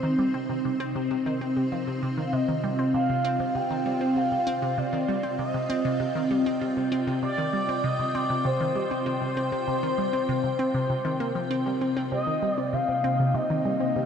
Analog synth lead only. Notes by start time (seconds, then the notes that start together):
2.25 F5
2.33 D#5
2.94 F5
3.55 G5
4.17 F5
4.78 D5
5.39 D#5
6.35 D5
7.22 D5
7.84 D#5
8.15 D5
8.45 C5
12.12 D#5
12.53 D5
12.74 F5
13.35 D#5